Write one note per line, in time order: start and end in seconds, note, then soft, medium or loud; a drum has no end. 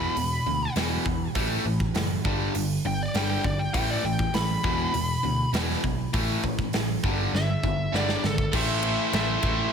0.00 0.14 E2 medium
0.00 0.15 B2 medium
0.00 0.15 E3 loud
0.00 0.73 B5 loud
0.16 0.36 E1 medium
0.16 0.43 E2 medium
0.16 0.43 B2 medium
0.16 open hi-hat medium
0.46 0.66 D2 medium
0.46 0.73 E2 medium
0.46 0.74 B2 medium
0.76 0.96 E1 medium
0.76 1.04 E2 medium
0.76 1.04 B2 loud
0.76 1.04 E3 loud
0.76 snare loud
0.76 open hi-hat medium
1.06 1.26 E2 medium
1.06 1.33 E2 medium
1.06 1.33 B2 medium
1.06 kick medium
1.35 1.55 A1 medium
1.35 1.64 A2 medium
1.35 1.64 E3 medium
1.35 1.64 A3 medium
1.35 kick loud
1.35 open hi-hat medium
1.65 1.85 A1 medium
1.65 1.93 A2 medium
1.65 1.93 E3 medium
1.80 kick medium
1.95 2.15 F#1 medium
1.95 2.22 A2 medium
1.95 2.23 E3 medium
1.95 snare loud
1.95 open hi-hat medium
2.25 2.45 G1 medium
2.25 2.53 G2 medium
2.25 2.54 D3 loud
2.25 2.54 G3 loud
2.25 kick loud
2.55 2.75 G1 medium
2.55 2.82 G2 medium
2.55 2.82 D3 medium
2.55 open hi-hat medium
2.85 3.05 G1 medium
2.85 3.12 G2 medium
2.85 3.12 D3 medium
2.85 3.01 G5 loud
3.03 3.16 D5 medium
3.14 3.35 G1 loud
3.14 3.43 G2 medium
3.14 3.43 D3 loud
3.14 3.44 G3 loud
3.14 3.29 G5 loud
3.14 snare loud
3.14 open hi-hat medium
3.30 3.45 G5 medium
3.44 3.64 G1 loud
3.44 3.72 G2 medium
3.44 3.72 D3 medium
3.44 3.60 D5 medium
3.44 kick medium
3.59 3.73 G5 loud
3.74 3.94 A1 loud
3.74 4.02 A2 medium
3.74 4.03 E3 medium
3.74 4.03 A3 medium
3.74 3.89 G5 loud
3.74 kick loud
3.74 open hi-hat medium
3.91 4.05 D5 medium
4.04 4.24 A1 medium
4.04 4.32 A2 medium
4.04 4.32 E3 medium
4.04 4.34 G5 loud
4.19 kick medium
4.34 4.54 A1 medium
4.34 4.61 A2 medium
4.34 4.61 E3 medium
4.34 5.51 B5 loud
4.34 snare loud
4.34 open hi-hat medium
4.63 4.84 E1 medium
4.63 4.92 E2 medium
4.63 4.93 B2 loud
4.63 4.93 E3 loud
4.63 kick loud
4.94 5.14 E1 medium
4.94 5.21 E2 medium
4.94 5.21 B2 medium
4.94 open hi-hat medium
5.23 5.44 D2 medium
5.23 5.51 E2 medium
5.23 5.51 B2 medium
5.53 5.73 E1 medium
5.53 5.82 E2 medium
5.53 5.82 B2 medium
5.53 5.82 E3 loud
5.53 snare loud
5.53 open hi-hat medium
5.70 snare soft
5.84 6.04 B1 medium
5.84 6.11 E2 medium
5.84 6.11 B2 medium
5.84 kick medium
6.13 6.34 A1 loud
6.13 6.42 A2 medium
6.13 6.42 E3 loud
6.13 6.42 A3 loud
6.13 kick loud
6.13 open hi-hat medium
6.44 6.63 A1 loud
6.44 6.71 A2 medium
6.44 6.71 E3 medium
6.44 kick medium
6.59 kick medium
6.73 6.94 A1 medium
6.73 7.01 A2 medium
6.73 7.01 E3 medium
6.73 snare loud
6.73 open hi-hat medium
7.04 7.24 G1 medium
7.04 7.32 G2 medium
7.04 7.32 D3 loud
7.04 7.33 G3 loud
7.04 kick loud
7.33 7.53 G1 medium
7.33 7.61 G2 medium
7.33 7.61 D3 medium
7.33 7.93 E5 loud
7.33 snare medium
7.63 7.84 G1 loud
7.63 7.91 G2 medium
7.63 7.91 D3 medium
7.63 kick medium
7.94 8.13 G1 loud
7.94 8.22 G2 medium
7.94 8.22 D3 loud
7.94 8.22 G3 loud
7.94 8.24 D5 medium
7.94 snare medium
8.09 snare medium
8.24 8.44 G#1 medium
8.24 8.51 G2 medium
8.24 8.51 D3 medium
8.24 8.54 A4 loud
8.24 snare medium
8.38 kick medium
8.53 8.95 A1 medium
8.53 8.83 A2 medium
8.53 8.83 E3 loud
8.53 8.84 A3 loud
8.53 9.11 C5 medium
8.53 9.13 E5 medium
8.53 kick loud
8.53 crash loud
8.83 9.13 A2 medium
8.83 9.13 E3 medium
8.83 9.14 A3 medium
8.83 ride medium
9.13 9.34 A1 medium
9.13 9.42 A2 loud
9.13 9.43 E3 medium
9.13 9.44 A3 loud
9.13 9.70 C5 medium
9.13 9.73 E5 loud
9.13 snare loud
9.13 ride loud
9.43 9.64 A1 medium
9.43 9.71 A2 medium
9.43 9.72 E3 medium
9.43 9.73 A3 medium
9.43 kick medium
9.43 ride medium